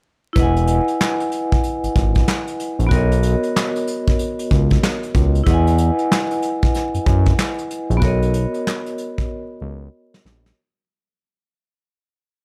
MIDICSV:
0, 0, Header, 1, 4, 480
1, 0, Start_track
1, 0, Tempo, 638298
1, 268, Time_signature, 4, 2, 24, 8
1, 9357, End_track
2, 0, Start_track
2, 0, Title_t, "Vibraphone"
2, 0, Program_c, 0, 11
2, 248, Note_on_c, 0, 64, 71
2, 267, Note_on_c, 0, 71, 69
2, 286, Note_on_c, 0, 75, 65
2, 304, Note_on_c, 0, 78, 75
2, 322, Note_on_c, 0, 80, 88
2, 393, Control_c, 0, 64, 127
2, 2148, Note_off_c, 0, 64, 0
2, 2155, Note_on_c, 0, 59, 72
2, 2157, Note_off_c, 0, 71, 0
2, 2167, Note_off_c, 0, 75, 0
2, 2172, Note_on_c, 0, 66, 65
2, 2176, Note_off_c, 0, 78, 0
2, 2185, Note_off_c, 0, 80, 0
2, 2192, Note_on_c, 0, 70, 71
2, 2199, Control_c, 0, 64, 0
2, 2210, Note_on_c, 0, 73, 62
2, 2229, Note_on_c, 0, 75, 78
2, 2346, Control_c, 0, 64, 127
2, 4062, Note_off_c, 0, 59, 0
2, 4070, Note_off_c, 0, 66, 0
2, 4080, Note_off_c, 0, 70, 0
2, 4087, Note_on_c, 0, 64, 70
2, 4089, Note_off_c, 0, 73, 0
2, 4099, Note_off_c, 0, 75, 0
2, 4106, Note_on_c, 0, 71, 69
2, 4117, Control_c, 0, 64, 0
2, 4124, Note_on_c, 0, 75, 64
2, 4143, Note_on_c, 0, 78, 72
2, 4161, Note_on_c, 0, 80, 89
2, 4227, Control_c, 0, 64, 127
2, 5988, Note_off_c, 0, 64, 0
2, 5995, Note_on_c, 0, 59, 73
2, 5997, Note_off_c, 0, 71, 0
2, 6006, Note_off_c, 0, 75, 0
2, 6015, Note_on_c, 0, 66, 68
2, 6016, Note_off_c, 0, 78, 0
2, 6025, Note_off_c, 0, 80, 0
2, 6032, Note_on_c, 0, 70, 68
2, 6040, Control_c, 0, 64, 0
2, 6052, Note_on_c, 0, 73, 65
2, 6070, Note_on_c, 0, 75, 78
2, 6166, Control_c, 0, 64, 127
2, 7902, Note_off_c, 0, 59, 0
2, 7912, Note_off_c, 0, 66, 0
2, 7920, Note_off_c, 0, 70, 0
2, 7930, Note_off_c, 0, 73, 0
2, 7939, Note_off_c, 0, 75, 0
2, 7959, Control_c, 0, 64, 0
2, 9357, End_track
3, 0, Start_track
3, 0, Title_t, "Analog synth bass"
3, 0, Program_c, 1, 38
3, 270, Note_on_c, 1, 28, 110
3, 603, Note_off_c, 1, 28, 0
3, 1379, Note_on_c, 1, 32, 50
3, 1415, Note_off_c, 1, 32, 0
3, 1473, Note_on_c, 1, 32, 92
3, 1676, Note_off_c, 1, 32, 0
3, 2098, Note_on_c, 1, 34, 90
3, 2175, Note_off_c, 1, 34, 0
3, 2190, Note_on_c, 1, 35, 120
3, 2523, Note_off_c, 1, 35, 0
3, 3393, Note_on_c, 1, 37, 97
3, 3596, Note_off_c, 1, 37, 0
3, 3871, Note_on_c, 1, 37, 102
3, 4075, Note_off_c, 1, 37, 0
3, 4111, Note_on_c, 1, 40, 107
3, 4444, Note_off_c, 1, 40, 0
3, 5221, Note_on_c, 1, 42, 50
3, 5256, Note_off_c, 1, 42, 0
3, 5312, Note_on_c, 1, 42, 98
3, 5516, Note_off_c, 1, 42, 0
3, 5940, Note_on_c, 1, 34, 100
3, 6016, Note_off_c, 1, 34, 0
3, 6031, Note_on_c, 1, 35, 110
3, 6363, Note_off_c, 1, 35, 0
3, 7229, Note_on_c, 1, 37, 101
3, 7434, Note_off_c, 1, 37, 0
3, 7709, Note_on_c, 1, 34, 88
3, 7914, Note_off_c, 1, 34, 0
3, 9357, End_track
4, 0, Start_track
4, 0, Title_t, "Drums"
4, 270, Note_on_c, 9, 36, 114
4, 270, Note_on_c, 9, 42, 101
4, 345, Note_off_c, 9, 36, 0
4, 346, Note_off_c, 9, 42, 0
4, 425, Note_on_c, 9, 42, 64
4, 500, Note_off_c, 9, 42, 0
4, 508, Note_on_c, 9, 42, 87
4, 583, Note_off_c, 9, 42, 0
4, 661, Note_on_c, 9, 42, 49
4, 736, Note_off_c, 9, 42, 0
4, 757, Note_on_c, 9, 38, 123
4, 765, Note_on_c, 9, 39, 101
4, 832, Note_off_c, 9, 38, 0
4, 840, Note_off_c, 9, 39, 0
4, 903, Note_on_c, 9, 42, 58
4, 979, Note_off_c, 9, 42, 0
4, 991, Note_on_c, 9, 42, 70
4, 1066, Note_off_c, 9, 42, 0
4, 1142, Note_on_c, 9, 42, 55
4, 1145, Note_on_c, 9, 36, 94
4, 1217, Note_off_c, 9, 42, 0
4, 1220, Note_off_c, 9, 36, 0
4, 1231, Note_on_c, 9, 42, 82
4, 1306, Note_off_c, 9, 42, 0
4, 1382, Note_on_c, 9, 42, 64
4, 1457, Note_off_c, 9, 42, 0
4, 1472, Note_on_c, 9, 36, 101
4, 1472, Note_on_c, 9, 42, 76
4, 1547, Note_off_c, 9, 36, 0
4, 1547, Note_off_c, 9, 42, 0
4, 1616, Note_on_c, 9, 42, 53
4, 1623, Note_on_c, 9, 36, 89
4, 1692, Note_off_c, 9, 42, 0
4, 1698, Note_off_c, 9, 36, 0
4, 1714, Note_on_c, 9, 38, 117
4, 1721, Note_on_c, 9, 39, 90
4, 1789, Note_off_c, 9, 38, 0
4, 1796, Note_off_c, 9, 39, 0
4, 1861, Note_on_c, 9, 42, 55
4, 1936, Note_off_c, 9, 42, 0
4, 1954, Note_on_c, 9, 42, 79
4, 2029, Note_off_c, 9, 42, 0
4, 2103, Note_on_c, 9, 42, 56
4, 2178, Note_off_c, 9, 42, 0
4, 2190, Note_on_c, 9, 36, 111
4, 2191, Note_on_c, 9, 42, 103
4, 2265, Note_off_c, 9, 36, 0
4, 2266, Note_off_c, 9, 42, 0
4, 2344, Note_on_c, 9, 42, 64
4, 2419, Note_off_c, 9, 42, 0
4, 2429, Note_on_c, 9, 42, 86
4, 2504, Note_off_c, 9, 42, 0
4, 2581, Note_on_c, 9, 42, 50
4, 2656, Note_off_c, 9, 42, 0
4, 2679, Note_on_c, 9, 38, 127
4, 2687, Note_on_c, 9, 39, 101
4, 2755, Note_off_c, 9, 38, 0
4, 2762, Note_off_c, 9, 39, 0
4, 2824, Note_on_c, 9, 42, 58
4, 2899, Note_off_c, 9, 42, 0
4, 2913, Note_on_c, 9, 42, 70
4, 2988, Note_off_c, 9, 42, 0
4, 3063, Note_on_c, 9, 42, 53
4, 3065, Note_on_c, 9, 36, 95
4, 3138, Note_off_c, 9, 42, 0
4, 3141, Note_off_c, 9, 36, 0
4, 3152, Note_on_c, 9, 42, 86
4, 3227, Note_off_c, 9, 42, 0
4, 3302, Note_on_c, 9, 42, 65
4, 3378, Note_off_c, 9, 42, 0
4, 3392, Note_on_c, 9, 36, 99
4, 3393, Note_on_c, 9, 42, 75
4, 3467, Note_off_c, 9, 36, 0
4, 3468, Note_off_c, 9, 42, 0
4, 3537, Note_on_c, 9, 42, 51
4, 3544, Note_on_c, 9, 36, 89
4, 3612, Note_off_c, 9, 42, 0
4, 3619, Note_off_c, 9, 36, 0
4, 3634, Note_on_c, 9, 38, 119
4, 3642, Note_on_c, 9, 39, 90
4, 3710, Note_off_c, 9, 38, 0
4, 3717, Note_off_c, 9, 39, 0
4, 3783, Note_on_c, 9, 42, 57
4, 3858, Note_off_c, 9, 42, 0
4, 3870, Note_on_c, 9, 36, 103
4, 3875, Note_on_c, 9, 42, 80
4, 3946, Note_off_c, 9, 36, 0
4, 3950, Note_off_c, 9, 42, 0
4, 4024, Note_on_c, 9, 42, 54
4, 4099, Note_off_c, 9, 42, 0
4, 4110, Note_on_c, 9, 36, 113
4, 4112, Note_on_c, 9, 42, 101
4, 4185, Note_off_c, 9, 36, 0
4, 4187, Note_off_c, 9, 42, 0
4, 4265, Note_on_c, 9, 42, 65
4, 4340, Note_off_c, 9, 42, 0
4, 4348, Note_on_c, 9, 42, 84
4, 4423, Note_off_c, 9, 42, 0
4, 4502, Note_on_c, 9, 42, 49
4, 4577, Note_off_c, 9, 42, 0
4, 4599, Note_on_c, 9, 38, 124
4, 4607, Note_on_c, 9, 39, 102
4, 4675, Note_off_c, 9, 38, 0
4, 4682, Note_off_c, 9, 39, 0
4, 4744, Note_on_c, 9, 42, 58
4, 4819, Note_off_c, 9, 42, 0
4, 4832, Note_on_c, 9, 42, 73
4, 4907, Note_off_c, 9, 42, 0
4, 4981, Note_on_c, 9, 42, 54
4, 4985, Note_on_c, 9, 36, 97
4, 5057, Note_off_c, 9, 42, 0
4, 5060, Note_off_c, 9, 36, 0
4, 5071, Note_on_c, 9, 42, 87
4, 5081, Note_on_c, 9, 38, 37
4, 5146, Note_off_c, 9, 42, 0
4, 5157, Note_off_c, 9, 38, 0
4, 5222, Note_on_c, 9, 42, 63
4, 5297, Note_off_c, 9, 42, 0
4, 5312, Note_on_c, 9, 36, 95
4, 5313, Note_on_c, 9, 42, 76
4, 5387, Note_off_c, 9, 36, 0
4, 5388, Note_off_c, 9, 42, 0
4, 5457, Note_on_c, 9, 42, 54
4, 5464, Note_on_c, 9, 36, 90
4, 5533, Note_off_c, 9, 42, 0
4, 5539, Note_off_c, 9, 36, 0
4, 5555, Note_on_c, 9, 38, 113
4, 5562, Note_on_c, 9, 39, 92
4, 5630, Note_off_c, 9, 38, 0
4, 5638, Note_off_c, 9, 39, 0
4, 5703, Note_on_c, 9, 42, 54
4, 5778, Note_off_c, 9, 42, 0
4, 5795, Note_on_c, 9, 42, 77
4, 5870, Note_off_c, 9, 42, 0
4, 5945, Note_on_c, 9, 42, 55
4, 6020, Note_off_c, 9, 42, 0
4, 6030, Note_on_c, 9, 36, 115
4, 6031, Note_on_c, 9, 42, 100
4, 6105, Note_off_c, 9, 36, 0
4, 6107, Note_off_c, 9, 42, 0
4, 6185, Note_on_c, 9, 42, 61
4, 6260, Note_off_c, 9, 42, 0
4, 6270, Note_on_c, 9, 42, 87
4, 6345, Note_off_c, 9, 42, 0
4, 6423, Note_on_c, 9, 42, 52
4, 6498, Note_off_c, 9, 42, 0
4, 6519, Note_on_c, 9, 38, 127
4, 6527, Note_on_c, 9, 39, 102
4, 6595, Note_off_c, 9, 38, 0
4, 6602, Note_off_c, 9, 39, 0
4, 6665, Note_on_c, 9, 42, 58
4, 6740, Note_off_c, 9, 42, 0
4, 6753, Note_on_c, 9, 42, 69
4, 6828, Note_off_c, 9, 42, 0
4, 6903, Note_on_c, 9, 42, 54
4, 6905, Note_on_c, 9, 36, 94
4, 6978, Note_off_c, 9, 42, 0
4, 6981, Note_off_c, 9, 36, 0
4, 7627, Note_on_c, 9, 38, 85
4, 7702, Note_off_c, 9, 38, 0
4, 7717, Note_on_c, 9, 38, 108
4, 7792, Note_off_c, 9, 38, 0
4, 7866, Note_on_c, 9, 38, 94
4, 7942, Note_off_c, 9, 38, 0
4, 9357, End_track
0, 0, End_of_file